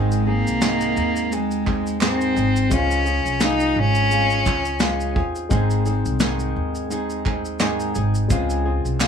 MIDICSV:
0, 0, Header, 1, 6, 480
1, 0, Start_track
1, 0, Key_signature, -4, "major"
1, 0, Tempo, 699301
1, 1862, Time_signature, 4, 2, 24, 8
1, 6230, End_track
2, 0, Start_track
2, 0, Title_t, "Upright piano"
2, 0, Program_c, 0, 0
2, 0, Note_on_c, 0, 56, 61
2, 0, Note_on_c, 0, 60, 58
2, 0, Note_on_c, 0, 63, 61
2, 0, Note_on_c, 0, 72, 69
2, 60, Control_c, 0, 64, 127
2, 1830, Note_off_c, 0, 56, 0
2, 1834, Note_off_c, 0, 60, 0
2, 1839, Note_off_c, 0, 63, 0
2, 1844, Note_off_c, 0, 72, 0
2, 1851, Note_on_c, 0, 56, 67
2, 1861, Note_on_c, 0, 61, 54
2, 1870, Note_on_c, 0, 65, 57
2, 1872, Control_c, 0, 64, 0
2, 1880, Note_on_c, 0, 72, 71
2, 1999, Control_c, 0, 64, 127
2, 3749, Note_off_c, 0, 56, 0
2, 3754, Note_off_c, 0, 61, 0
2, 3758, Note_off_c, 0, 65, 0
2, 3763, Note_off_c, 0, 72, 0
2, 3769, Note_on_c, 0, 56, 75
2, 3778, Note_on_c, 0, 60, 67
2, 3786, Note_on_c, 0, 63, 64
2, 3790, Control_c, 0, 64, 0
2, 3796, Note_on_c, 0, 72, 82
2, 3899, Control_c, 0, 64, 127
2, 5667, Note_off_c, 0, 56, 0
2, 5672, Note_off_c, 0, 60, 0
2, 5676, Note_off_c, 0, 63, 0
2, 5681, Note_off_c, 0, 72, 0
2, 5685, Note_on_c, 0, 56, 76
2, 5696, Note_on_c, 0, 61, 71
2, 5704, Note_on_c, 0, 65, 62
2, 5709, Control_c, 0, 64, 0
2, 5712, Note_on_c, 0, 72, 81
2, 5848, Control_c, 0, 64, 127
2, 6230, Note_off_c, 0, 56, 0
2, 6230, Note_off_c, 0, 61, 0
2, 6230, Note_off_c, 0, 65, 0
2, 6230, Note_off_c, 0, 72, 0
2, 6230, End_track
3, 0, Start_track
3, 0, Title_t, "Cello"
3, 0, Program_c, 1, 42
3, 0, Note_on_c, 1, 56, 83
3, 191, Note_on_c, 1, 58, 101
3, 201, Note_off_c, 1, 56, 0
3, 913, Note_on_c, 1, 56, 86
3, 923, Note_off_c, 1, 58, 0
3, 1387, Note_off_c, 1, 56, 0
3, 1393, Note_on_c, 1, 60, 91
3, 1875, Note_on_c, 1, 61, 92
3, 1885, Note_off_c, 1, 60, 0
3, 2354, Note_on_c, 1, 63, 109
3, 2364, Note_off_c, 1, 61, 0
3, 2597, Note_on_c, 1, 61, 113
3, 2608, Note_off_c, 1, 63, 0
3, 3550, Note_off_c, 1, 61, 0
3, 6230, End_track
4, 0, Start_track
4, 0, Title_t, "Nylon-string guitar"
4, 0, Program_c, 2, 24
4, 0, Note_on_c, 2, 44, 85
4, 0, Note_on_c, 2, 51, 76
4, 0, Note_on_c, 2, 56, 71
4, 0, Note_on_c, 2, 60, 81
4, 0, Note_on_c, 2, 63, 73
4, 0, Note_on_c, 2, 68, 86
4, 173, Note_off_c, 2, 68, 0
4, 178, Note_off_c, 2, 63, 0
4, 181, Note_off_c, 2, 60, 0
4, 181, Note_on_c, 2, 68, 48
4, 182, Note_off_c, 2, 44, 0
4, 183, Note_off_c, 2, 51, 0
4, 185, Note_off_c, 2, 56, 0
4, 186, Note_on_c, 2, 63, 41
4, 190, Note_on_c, 2, 60, 40
4, 193, Note_on_c, 2, 56, 41
4, 416, Note_off_c, 2, 56, 0
4, 418, Note_off_c, 2, 60, 0
4, 419, Note_off_c, 2, 63, 0
4, 419, Note_on_c, 2, 44, 72
4, 422, Note_off_c, 2, 68, 0
4, 423, Note_on_c, 2, 51, 77
4, 424, Note_on_c, 2, 56, 75
4, 427, Note_on_c, 2, 60, 75
4, 427, Note_on_c, 2, 63, 73
4, 429, Note_on_c, 2, 68, 89
4, 897, Note_off_c, 2, 56, 0
4, 900, Note_on_c, 2, 56, 52
4, 901, Note_off_c, 2, 44, 0
4, 901, Note_off_c, 2, 63, 0
4, 903, Note_off_c, 2, 51, 0
4, 903, Note_off_c, 2, 60, 0
4, 906, Note_on_c, 2, 60, 58
4, 909, Note_on_c, 2, 63, 58
4, 910, Note_off_c, 2, 68, 0
4, 913, Note_on_c, 2, 68, 54
4, 1130, Note_off_c, 2, 68, 0
4, 1136, Note_off_c, 2, 63, 0
4, 1138, Note_on_c, 2, 68, 47
4, 1139, Note_off_c, 2, 60, 0
4, 1141, Note_off_c, 2, 56, 0
4, 1144, Note_on_c, 2, 63, 44
4, 1148, Note_on_c, 2, 60, 44
4, 1151, Note_on_c, 2, 56, 37
4, 1376, Note_off_c, 2, 56, 0
4, 1379, Note_off_c, 2, 60, 0
4, 1380, Note_off_c, 2, 63, 0
4, 1380, Note_off_c, 2, 68, 0
4, 1380, Note_on_c, 2, 44, 69
4, 1382, Note_on_c, 2, 51, 78
4, 1384, Note_on_c, 2, 56, 82
4, 1387, Note_on_c, 2, 60, 82
4, 1388, Note_on_c, 2, 63, 81
4, 1391, Note_on_c, 2, 68, 85
4, 1612, Note_off_c, 2, 68, 0
4, 1616, Note_off_c, 2, 63, 0
4, 1620, Note_on_c, 2, 68, 50
4, 1621, Note_off_c, 2, 44, 0
4, 1621, Note_off_c, 2, 60, 0
4, 1622, Note_off_c, 2, 51, 0
4, 1623, Note_off_c, 2, 56, 0
4, 1624, Note_on_c, 2, 63, 50
4, 1629, Note_on_c, 2, 60, 51
4, 1632, Note_on_c, 2, 56, 37
4, 1856, Note_off_c, 2, 56, 0
4, 1861, Note_off_c, 2, 68, 0
4, 1861, Note_on_c, 2, 49, 69
4, 1863, Note_off_c, 2, 63, 0
4, 1864, Note_on_c, 2, 56, 75
4, 1865, Note_off_c, 2, 60, 0
4, 1869, Note_on_c, 2, 65, 80
4, 1872, Note_on_c, 2, 68, 83
4, 2092, Note_off_c, 2, 68, 0
4, 2099, Note_off_c, 2, 65, 0
4, 2100, Note_on_c, 2, 68, 49
4, 2102, Note_off_c, 2, 49, 0
4, 2103, Note_off_c, 2, 56, 0
4, 2108, Note_on_c, 2, 65, 41
4, 2340, Note_off_c, 2, 65, 0
4, 2341, Note_off_c, 2, 68, 0
4, 2345, Note_on_c, 2, 56, 85
4, 2348, Note_on_c, 2, 65, 88
4, 2351, Note_on_c, 2, 68, 89
4, 2816, Note_off_c, 2, 56, 0
4, 2818, Note_on_c, 2, 56, 60
4, 2819, Note_off_c, 2, 65, 0
4, 2827, Note_on_c, 2, 65, 64
4, 2829, Note_off_c, 2, 68, 0
4, 2832, Note_on_c, 2, 68, 60
4, 3049, Note_off_c, 2, 68, 0
4, 3057, Note_off_c, 2, 65, 0
4, 3058, Note_on_c, 2, 68, 52
4, 3060, Note_off_c, 2, 56, 0
4, 3065, Note_on_c, 2, 65, 42
4, 3298, Note_off_c, 2, 65, 0
4, 3298, Note_on_c, 2, 49, 78
4, 3300, Note_off_c, 2, 68, 0
4, 3301, Note_on_c, 2, 56, 88
4, 3306, Note_on_c, 2, 65, 94
4, 3307, Note_on_c, 2, 68, 85
4, 3529, Note_off_c, 2, 68, 0
4, 3536, Note_off_c, 2, 65, 0
4, 3537, Note_on_c, 2, 68, 61
4, 3540, Note_off_c, 2, 49, 0
4, 3541, Note_off_c, 2, 56, 0
4, 3544, Note_on_c, 2, 65, 61
4, 3552, Note_on_c, 2, 60, 49
4, 3775, Note_off_c, 2, 60, 0
4, 3775, Note_on_c, 2, 44, 84
4, 3778, Note_off_c, 2, 68, 0
4, 3778, Note_on_c, 2, 51, 77
4, 3780, Note_on_c, 2, 56, 79
4, 3782, Note_off_c, 2, 65, 0
4, 3783, Note_on_c, 2, 60, 79
4, 3785, Note_on_c, 2, 63, 81
4, 3786, Note_on_c, 2, 68, 88
4, 4009, Note_off_c, 2, 68, 0
4, 4014, Note_off_c, 2, 63, 0
4, 4016, Note_off_c, 2, 60, 0
4, 4017, Note_on_c, 2, 68, 56
4, 4018, Note_off_c, 2, 44, 0
4, 4020, Note_off_c, 2, 51, 0
4, 4021, Note_off_c, 2, 56, 0
4, 4023, Note_on_c, 2, 63, 52
4, 4024, Note_on_c, 2, 60, 43
4, 4029, Note_on_c, 2, 56, 46
4, 4255, Note_off_c, 2, 56, 0
4, 4256, Note_off_c, 2, 60, 0
4, 4258, Note_off_c, 2, 63, 0
4, 4258, Note_on_c, 2, 44, 85
4, 4260, Note_off_c, 2, 68, 0
4, 4262, Note_on_c, 2, 51, 78
4, 4263, Note_on_c, 2, 56, 84
4, 4264, Note_on_c, 2, 60, 84
4, 4267, Note_on_c, 2, 63, 85
4, 4269, Note_on_c, 2, 68, 96
4, 4736, Note_off_c, 2, 56, 0
4, 4737, Note_off_c, 2, 63, 0
4, 4739, Note_off_c, 2, 60, 0
4, 4739, Note_on_c, 2, 56, 65
4, 4740, Note_off_c, 2, 44, 0
4, 4742, Note_off_c, 2, 51, 0
4, 4742, Note_on_c, 2, 60, 67
4, 4745, Note_on_c, 2, 63, 70
4, 4748, Note_off_c, 2, 68, 0
4, 4751, Note_on_c, 2, 68, 72
4, 4971, Note_off_c, 2, 68, 0
4, 4976, Note_off_c, 2, 63, 0
4, 4979, Note_off_c, 2, 60, 0
4, 4979, Note_on_c, 2, 68, 52
4, 4980, Note_off_c, 2, 56, 0
4, 4984, Note_on_c, 2, 63, 50
4, 4987, Note_on_c, 2, 60, 47
4, 4992, Note_on_c, 2, 56, 47
4, 5215, Note_off_c, 2, 56, 0
4, 5217, Note_off_c, 2, 60, 0
4, 5217, Note_off_c, 2, 63, 0
4, 5218, Note_on_c, 2, 44, 84
4, 5219, Note_off_c, 2, 68, 0
4, 5221, Note_on_c, 2, 51, 81
4, 5224, Note_on_c, 2, 56, 91
4, 5225, Note_on_c, 2, 60, 85
4, 5225, Note_on_c, 2, 63, 98
4, 5227, Note_on_c, 2, 68, 93
4, 5449, Note_off_c, 2, 68, 0
4, 5456, Note_off_c, 2, 63, 0
4, 5457, Note_on_c, 2, 68, 62
4, 5460, Note_off_c, 2, 44, 0
4, 5461, Note_off_c, 2, 51, 0
4, 5462, Note_off_c, 2, 56, 0
4, 5462, Note_off_c, 2, 60, 0
4, 5465, Note_on_c, 2, 63, 52
4, 5470, Note_on_c, 2, 60, 52
4, 5473, Note_on_c, 2, 56, 49
4, 5692, Note_off_c, 2, 56, 0
4, 5694, Note_off_c, 2, 60, 0
4, 5697, Note_on_c, 2, 49, 83
4, 5699, Note_off_c, 2, 68, 0
4, 5700, Note_on_c, 2, 56, 87
4, 5702, Note_off_c, 2, 63, 0
4, 5702, Note_on_c, 2, 60, 86
4, 5705, Note_on_c, 2, 65, 86
4, 5707, Note_on_c, 2, 68, 93
4, 5931, Note_off_c, 2, 68, 0
4, 5937, Note_off_c, 2, 65, 0
4, 5939, Note_off_c, 2, 49, 0
4, 5939, Note_on_c, 2, 68, 57
4, 5941, Note_off_c, 2, 56, 0
4, 5942, Note_off_c, 2, 60, 0
4, 5945, Note_on_c, 2, 65, 48
4, 5951, Note_on_c, 2, 60, 43
4, 6173, Note_off_c, 2, 60, 0
4, 6174, Note_off_c, 2, 65, 0
4, 6177, Note_off_c, 2, 68, 0
4, 6179, Note_on_c, 2, 56, 90
4, 6181, Note_on_c, 2, 60, 89
4, 6182, Note_on_c, 2, 65, 84
4, 6185, Note_on_c, 2, 68, 91
4, 6230, Note_off_c, 2, 56, 0
4, 6230, Note_off_c, 2, 60, 0
4, 6230, Note_off_c, 2, 65, 0
4, 6230, Note_off_c, 2, 68, 0
4, 6230, End_track
5, 0, Start_track
5, 0, Title_t, "Upright bass"
5, 0, Program_c, 3, 32
5, 0, Note_on_c, 3, 32, 111
5, 288, Note_off_c, 3, 32, 0
5, 317, Note_on_c, 3, 36, 81
5, 636, Note_off_c, 3, 36, 0
5, 665, Note_on_c, 3, 39, 92
5, 1596, Note_off_c, 3, 39, 0
5, 1622, Note_on_c, 3, 32, 90
5, 1843, Note_off_c, 3, 32, 0
5, 1864, Note_on_c, 3, 37, 107
5, 2207, Note_off_c, 3, 37, 0
5, 2233, Note_on_c, 3, 36, 81
5, 2554, Note_off_c, 3, 36, 0
5, 2583, Note_on_c, 3, 32, 96
5, 3035, Note_off_c, 3, 32, 0
5, 3063, Note_on_c, 3, 37, 89
5, 3515, Note_off_c, 3, 37, 0
5, 3541, Note_on_c, 3, 39, 93
5, 3762, Note_off_c, 3, 39, 0
5, 3782, Note_on_c, 3, 32, 100
5, 4126, Note_off_c, 3, 32, 0
5, 4158, Note_on_c, 3, 36, 88
5, 4476, Note_off_c, 3, 36, 0
5, 4504, Note_on_c, 3, 39, 84
5, 5435, Note_off_c, 3, 39, 0
5, 5462, Note_on_c, 3, 32, 92
5, 5683, Note_off_c, 3, 32, 0
5, 5700, Note_on_c, 3, 37, 110
5, 6045, Note_off_c, 3, 37, 0
5, 6075, Note_on_c, 3, 36, 82
5, 6230, Note_off_c, 3, 36, 0
5, 6230, End_track
6, 0, Start_track
6, 0, Title_t, "Drums"
6, 79, Note_on_c, 9, 82, 53
6, 148, Note_off_c, 9, 82, 0
6, 323, Note_on_c, 9, 82, 49
6, 392, Note_off_c, 9, 82, 0
6, 422, Note_on_c, 9, 82, 82
6, 423, Note_on_c, 9, 38, 119
6, 427, Note_on_c, 9, 39, 77
6, 490, Note_off_c, 9, 82, 0
6, 492, Note_off_c, 9, 38, 0
6, 496, Note_off_c, 9, 39, 0
6, 554, Note_on_c, 9, 82, 57
6, 623, Note_off_c, 9, 82, 0
6, 664, Note_on_c, 9, 82, 53
6, 733, Note_off_c, 9, 82, 0
6, 797, Note_on_c, 9, 82, 57
6, 866, Note_off_c, 9, 82, 0
6, 907, Note_on_c, 9, 82, 79
6, 976, Note_off_c, 9, 82, 0
6, 1037, Note_on_c, 9, 82, 50
6, 1106, Note_off_c, 9, 82, 0
6, 1146, Note_on_c, 9, 36, 88
6, 1146, Note_on_c, 9, 39, 59
6, 1214, Note_off_c, 9, 39, 0
6, 1215, Note_off_c, 9, 36, 0
6, 1281, Note_on_c, 9, 82, 47
6, 1349, Note_off_c, 9, 82, 0
6, 1379, Note_on_c, 9, 39, 94
6, 1382, Note_on_c, 9, 82, 58
6, 1386, Note_on_c, 9, 38, 110
6, 1447, Note_off_c, 9, 39, 0
6, 1450, Note_off_c, 9, 82, 0
6, 1455, Note_off_c, 9, 38, 0
6, 1518, Note_on_c, 9, 82, 52
6, 1586, Note_off_c, 9, 82, 0
6, 1624, Note_on_c, 9, 82, 48
6, 1693, Note_off_c, 9, 82, 0
6, 1758, Note_on_c, 9, 82, 50
6, 1827, Note_off_c, 9, 82, 0
6, 1862, Note_on_c, 9, 82, 85
6, 1863, Note_on_c, 9, 36, 118
6, 1930, Note_off_c, 9, 82, 0
6, 1932, Note_off_c, 9, 36, 0
6, 1996, Note_on_c, 9, 82, 58
6, 2065, Note_off_c, 9, 82, 0
6, 2101, Note_on_c, 9, 82, 53
6, 2170, Note_off_c, 9, 82, 0
6, 2237, Note_on_c, 9, 82, 53
6, 2305, Note_off_c, 9, 82, 0
6, 2336, Note_on_c, 9, 82, 85
6, 2338, Note_on_c, 9, 38, 117
6, 2347, Note_on_c, 9, 39, 79
6, 2405, Note_off_c, 9, 82, 0
6, 2406, Note_off_c, 9, 38, 0
6, 2415, Note_off_c, 9, 39, 0
6, 2470, Note_on_c, 9, 82, 52
6, 2539, Note_off_c, 9, 82, 0
6, 2710, Note_on_c, 9, 82, 54
6, 2779, Note_off_c, 9, 82, 0
6, 2822, Note_on_c, 9, 82, 77
6, 2890, Note_off_c, 9, 82, 0
6, 2952, Note_on_c, 9, 82, 41
6, 3021, Note_off_c, 9, 82, 0
6, 3060, Note_on_c, 9, 82, 56
6, 3063, Note_on_c, 9, 36, 86
6, 3071, Note_on_c, 9, 39, 60
6, 3128, Note_off_c, 9, 82, 0
6, 3131, Note_off_c, 9, 36, 0
6, 3139, Note_off_c, 9, 39, 0
6, 3193, Note_on_c, 9, 82, 48
6, 3262, Note_off_c, 9, 82, 0
6, 3291, Note_on_c, 9, 82, 60
6, 3295, Note_on_c, 9, 38, 116
6, 3299, Note_on_c, 9, 39, 82
6, 3360, Note_off_c, 9, 82, 0
6, 3364, Note_off_c, 9, 38, 0
6, 3368, Note_off_c, 9, 39, 0
6, 3434, Note_on_c, 9, 82, 50
6, 3503, Note_off_c, 9, 82, 0
6, 3542, Note_on_c, 9, 36, 93
6, 3610, Note_off_c, 9, 36, 0
6, 3675, Note_on_c, 9, 82, 50
6, 3744, Note_off_c, 9, 82, 0
6, 3781, Note_on_c, 9, 82, 75
6, 3782, Note_on_c, 9, 36, 111
6, 3849, Note_off_c, 9, 82, 0
6, 3850, Note_off_c, 9, 36, 0
6, 3915, Note_on_c, 9, 82, 54
6, 3983, Note_off_c, 9, 82, 0
6, 4020, Note_on_c, 9, 82, 48
6, 4089, Note_off_c, 9, 82, 0
6, 4156, Note_on_c, 9, 82, 48
6, 4224, Note_off_c, 9, 82, 0
6, 4255, Note_on_c, 9, 82, 85
6, 4256, Note_on_c, 9, 38, 119
6, 4263, Note_on_c, 9, 39, 77
6, 4324, Note_off_c, 9, 82, 0
6, 4325, Note_off_c, 9, 38, 0
6, 4332, Note_off_c, 9, 39, 0
6, 4389, Note_on_c, 9, 82, 54
6, 4457, Note_off_c, 9, 82, 0
6, 4634, Note_on_c, 9, 82, 52
6, 4702, Note_off_c, 9, 82, 0
6, 4742, Note_on_c, 9, 82, 78
6, 4811, Note_off_c, 9, 82, 0
6, 4873, Note_on_c, 9, 82, 47
6, 4941, Note_off_c, 9, 82, 0
6, 4981, Note_on_c, 9, 39, 61
6, 4982, Note_on_c, 9, 36, 86
6, 5050, Note_off_c, 9, 39, 0
6, 5051, Note_off_c, 9, 36, 0
6, 5114, Note_on_c, 9, 82, 47
6, 5183, Note_off_c, 9, 82, 0
6, 5212, Note_on_c, 9, 82, 53
6, 5217, Note_on_c, 9, 38, 101
6, 5218, Note_on_c, 9, 39, 90
6, 5281, Note_off_c, 9, 82, 0
6, 5285, Note_off_c, 9, 38, 0
6, 5287, Note_off_c, 9, 39, 0
6, 5353, Note_on_c, 9, 82, 52
6, 5421, Note_off_c, 9, 82, 0
6, 5457, Note_on_c, 9, 82, 49
6, 5525, Note_off_c, 9, 82, 0
6, 5592, Note_on_c, 9, 82, 49
6, 5661, Note_off_c, 9, 82, 0
6, 5699, Note_on_c, 9, 82, 87
6, 5700, Note_on_c, 9, 36, 119
6, 5767, Note_off_c, 9, 82, 0
6, 5768, Note_off_c, 9, 36, 0
6, 5833, Note_on_c, 9, 82, 55
6, 5902, Note_off_c, 9, 82, 0
6, 6077, Note_on_c, 9, 82, 51
6, 6146, Note_off_c, 9, 82, 0
6, 6178, Note_on_c, 9, 39, 81
6, 6179, Note_on_c, 9, 82, 91
6, 6180, Note_on_c, 9, 38, 123
6, 6230, Note_off_c, 9, 38, 0
6, 6230, Note_off_c, 9, 39, 0
6, 6230, Note_off_c, 9, 82, 0
6, 6230, End_track
0, 0, End_of_file